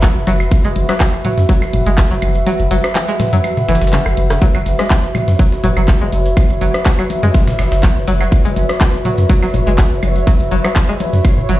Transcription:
Already playing: F#4 B4 E5
0.03 F#3, kick, snare, clap, closed hi-hat, high tom, shaker
0.16 F#1, shaker
0.27 F#1 F#3, snare, closed hi-hat, high tom
0.40 E1, closed hi-hat, high woodblock, shaker
0.51 kick, closed hi-hat, high tom, shaker
0.65 F#1 G#3, closed hi-hat, shaker
0.76 F#1, closed hi-hat, high tom
0.89 F#3, cross-stick, snare, closed hi-hat, shaker
0.99 kick, snare, clap, closed hi-hat, high tom, high woodblock, shaker
1.13 closed hi-hat, shaker
1.25 F#3, closed hi-hat, mid tom, high tom
1.38 F#2, snare, closed hi-hat, shaker
1.49 F#3, kick, closed hi-hat, high tom, shaker
1.62 snare, high woodblock, shaker
1.73 F#1, closed hi-hat, mid tom, high tom
1.86 F#1 G#3, closed hi-hat, shaker
1.98 kick, snare, clap, closed hi-hat, high tom, shaker
2.11 F#1 F#3, shaker
2.22 F#1, closed hi-hat, high tom, high woodblock
2.34 E1, closed hi-hat, shaker
2.47 F#3, closed hi-hat, high tom, shaker
2.60 F#1, closed hi-hat, shaker
2.71 F#1 F#3, closed hi-hat, high tom
2.84 cross-stick, closed hi-hat, high woodblock, shaker
2.95 snare, clap, closed hi-hat, high tom, shaker
3.08 G#3, closed hi-hat, shaker
3.20 snare, closed hi-hat, mid tom, high tom
3.33 F#2 F#3, closed hi-hat, shaker
3.43 closed hi-hat, high tom, high woodblock, shaker
3.57 snare, closed hi-hat, mid tom, shaker
3.68 F#1 E3, snare, closed hi-hat, high tom
3.75 snare, closed hi-hat
3.82 F#1, snare, closed hi-hat, shaker
3.87 snare, closed hi-hat
3.93 C#3, snare, clap, closed hi-hat, high tom, shaker
4.06 F#1, cross-stick, closed hi-hat, high woodblock, shaker
4.17 F#1, closed hi-hat, high tom
4.30 E1 C#3, cross-stick, snare, closed hi-hat, shaker
4.42 F#3 C#5, kick, closed hi-hat, high tom, shaker
4.55 F#1 F#3, closed hi-hat, high woodblock, shaker
4.66 F#1, closed hi-hat, open hi-hat, high tom
4.79 G#3, cross-stick, snare, closed hi-hat, shaker
4.90 kick, snare, clap, closed hi-hat, high tom, shaker
5.03 closed hi-hat, shaker
5.15 closed hi-hat, mid tom, open hi-hat, high tom, high woodblock
5.28 F#2, snare, closed hi-hat, shaker
5.39 F#3, kick, closed hi-hat, high tom, shaker
5.52 snare, shaker
5.64 F#1 F#3, closed hi-hat, mid tom, open hi-hat, high tom
5.77 F#1 F#3, closed hi-hat, high woodblock, shaker
5.88 kick, snare, clap, closed hi-hat, high tom, shaker
6.01 F#1 G#3, shaker
6.12 F#1, closed hi-hat, open hi-hat, high tom
6.25 E1, closed hi-hat, shaker
6.37 kick, closed hi-hat, high tom, high woodblock, shaker
6.50 F#1, closed hi-hat, shaker
6.61 F#1 F#3, closed hi-hat, open hi-hat, high tom
6.74 cross-stick, closed hi-hat, shaker
6.86 F#3, kick, snare, clap, closed hi-hat, high tom, shaker
6.99 F#3, high woodblock, shaker
7.10 closed hi-hat, open hi-hat, high tom
7.23 F#2 G#3, snare, closed hi-hat, shaker
7.34 kick, snare, closed hi-hat, high tom, shaker
7.47 snare, closed hi-hat, mid tom, shaker
7.59 F#1, snare, closed hi-hat, open hi-hat, high tom, high woodblock
7.72 F#1, snare, closed hi-hat, shaker
7.83 F#3, kick, snare, clap, closed hi-hat, high tom, shaker
7.96 F#1, shaker
8.08 F#1 F#3, snare, closed hi-hat, open hi-hat, high tom
8.21 E1 F#3, closed hi-hat, high woodblock, shaker
8.32 kick, closed hi-hat, high tom, shaker
8.45 F#1 G#3, closed hi-hat, shaker
8.56 F#1, closed hi-hat, open hi-hat, high tom
8.69 cross-stick, snare, closed hi-hat, shaker
8.81 kick, snare, clap, closed hi-hat, high tom, high woodblock, shaker
8.94 closed hi-hat, shaker
9.05 F#3, closed hi-hat, mid tom, open hi-hat, high tom
9.17 F#2, snare, closed hi-hat, shaker
9.29 F#3, kick, closed hi-hat, high tom, shaker
9.43 F#3, snare, high woodblock, shaker
9.54 F#1, closed hi-hat, mid tom, open hi-hat, high tom
9.67 F#1 G#3, closed hi-hat, shaker
9.78 kick, snare, clap, closed hi-hat, high tom, shaker
9.91 F#1, shaker
10.03 F#1, closed hi-hat, open hi-hat, high tom, high woodblock
10.16 E1, closed hi-hat, shaker
10.27 F#3, kick, closed hi-hat, high tom, shaker
10.40 F#1, closed hi-hat, shaker
10.51 F#1 F#3, closed hi-hat, open hi-hat, high tom
10.64 F#3, cross-stick, closed hi-hat, high woodblock, shaker
10.76 kick, snare, clap, closed hi-hat, high tom, shaker
10.89 G#3, closed hi-hat, shaker
11.00 closed hi-hat, open hi-hat, high tom
11.13 F#2, snare, closed hi-hat, shaker
11.24 kick, closed hi-hat, high tom, high woodblock, shaker
11.37 mid tom, shaker
11.49 F#1 F#3, closed hi-hat, open hi-hat, high tom

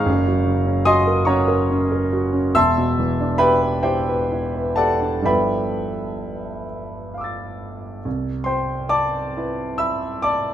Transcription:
Already playing: F5 A#5 C#6 F6
0.05 F#1 F#2
0.27 F#3
0.45 C#3
0.66 C#4
0.85 F#4 D#5 G#5 C6 D#6
1.07 A#4
1.25 C#4 C#5 F#5 A#5 C#6
1.48 A#4
1.70 C#4
1.92 A#4
2.13 F#4
2.33 C#4
2.55 E1 E2 E5 A5 C6 E6
2.78 B2
2.99 E3
3.20 D4
3.38 G4 B4 E5 G5 B5
3.62 B4
3.83 E4 G4 C5 E5 G5
4.09 B4
4.32 E4
4.56 B4
4.76 G4 A4 D5 F#5 A5
5.01 D4
5.22 G1 G2 F3 D4 E4 B4 E5 G5 B5
5.26 A4
7.14 F5 D6
7.21 E6 A6
8.05 C2
8.44 C5 G5 C6
8.89 D5 A5 D6
9.37 E4 B4
9.78 E5 B5 E6
10.22 D5 A5 D6

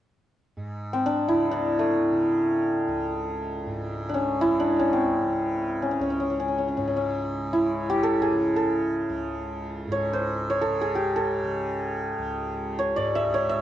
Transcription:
0.57 G#2
0.93 C4
1.06 D4
1.28 E4
1.34 C#3
1.51 D4
1.79 A3
2.12 C#3
2.88 C#2
3.66 G#2
4.09 D4
4.14 C#4
4.41 C#3 E4
4.60 D4
4.79 C#4
4.93 C4
5.21 C#3
5.82 C#4
5.91 C#4
5.99 C#2 C#4
6.10 C#4
6.20 C#4
6.30 C#4
6.40 C#4
6.48 C#4
6.58 C#4
6.68 C#4
6.77 G#2 C#4
6.88 C#4
6.97 C#4
7.53 C#3 E4
7.90 G4
8.03 A4
8.22 G#4
8.31 C#3
8.56 A4
9.09 C#2
9.87 G#2
9.92 C#5
10.13 C5
10.50 C#5
10.61 A4
10.66 C#3
10.81 G#4
10.95 G4
11.16 A4
11.43 C#3
12.19 C#2
12.79 C#5
12.96 G#2 D5
13.15 E5
13.34 C#5
13.49 E5

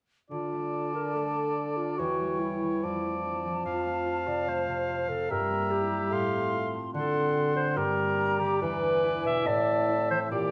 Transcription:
0.30 D3 F4 D5 A5
0.53 A3
0.73 A4
0.95 D4 A#4
1.15 A3 A4
1.36 D4
1.57 A4
1.77 D4 F4
1.97 E2 E3 F#4 C#5 G5
2.20 G3
2.40 E4
2.62 E3
2.83 F2 F3 D5 A5
3.05 A3
3.25 D4
3.45 F3
3.65 F2 F4 F5
3.86 A3
4.06 F4
4.27 C3 D5
4.48 A3 C5
4.68 C3
4.89 F4
5.09 C3 A4
5.29 G2 G3 A#4 E5 A#5
5.50 A#3
5.71 E4 G4
5.91 G3
6.11 A2 A3 F5 C6
6.32 C4
6.53 F4
6.74 A3
6.94 D3 A4 F#5 C6
7.15 C4
7.36 F#4
7.56 A3 C5
7.76 G2 G3 A#4 D5 A#5
7.98 A#3
8.19 D4
8.40 D3 G4
8.61 E2 E3 B4 G#5
8.83 D4
9.04 E4
9.25 B2 E5
9.46 A2 D5 E5 A5
9.67 C4
9.89 E4
10.10 E3 C5
10.31 A#2 G4 D5 G5

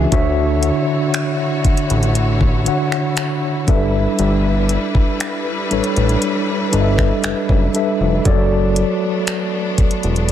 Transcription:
Already playing: E3 D4 F#4 G#4 E5
0.11 D2 D3 D4 E4 F#4 C#5 E5, kick, closed hi-hat
0.63 closed hi-hat
1.14 finger snap, closed hi-hat
1.65 A1, kick, closed hi-hat
1.77 closed hi-hat
1.90 A1, closed hi-hat
2.03 closed hi-hat
2.15 closed hi-hat
2.41 kick
2.65 D3 D4 F#4 C#5 F#5, closed hi-hat
2.92 finger snap
3.17 finger snap, closed hi-hat
3.67 G1 G3 D4 A4 B4 E5, kick, closed hi-hat
4.19 G1, closed hi-hat
4.69 closed hi-hat
4.95 kick
5.20 finger snap, closed hi-hat
5.71 A1 G3 D4 A4 B4 C#5, closed hi-hat
5.84 closed hi-hat
5.97 A1, closed hi-hat
6.09 closed hi-hat
6.22 closed hi-hat
6.72 G1 G3 D4 A4 B4 D#5, closed hi-hat
6.81 E5
6.98 finger snap, kick
7.24 F#1, finger snap, closed hi-hat
7.49 F#1, kick
7.74 G3 D4 A4 B4 E5, closed hi-hat
8.01 F1
8.24 F#1 F#3 A3 B3 D4 F#4 A4 C#5 D5, kick, closed hi-hat
8.76 closed hi-hat
9.27 finger snap, closed hi-hat
9.78 E1, kick, closed hi-hat
9.91 closed hi-hat
10.03 E1, closed hi-hat
10.16 closed hi-hat
10.29 closed hi-hat

